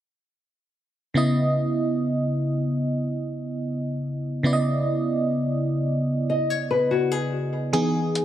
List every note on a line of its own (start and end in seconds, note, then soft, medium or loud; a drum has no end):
1.14 4.40 C#3 medium
1.14 4.40 B3 medium
1.14 4.41 E4 medium
1.14 4.41 D#5 medium
4.43 7.69 C#3 medium
4.43 7.69 B3 medium
4.43 7.70 E4 medium
4.43 4.52 D5 medium
4.53 7.74 D#5 medium
6.30 6.50 D#5 medium
6.50 6.70 C#5 medium
6.71 6.90 B4 medium
6.91 7.12 F#4 medium
7.12 7.70 G#4 medium
7.73 8.25 E3 medium
7.73 8.25 B3 medium
7.73 8.25 D#4 medium
7.73 8.25 G#4 medium
7.73 closed hi-hat medium
8.15 closed hi-hat medium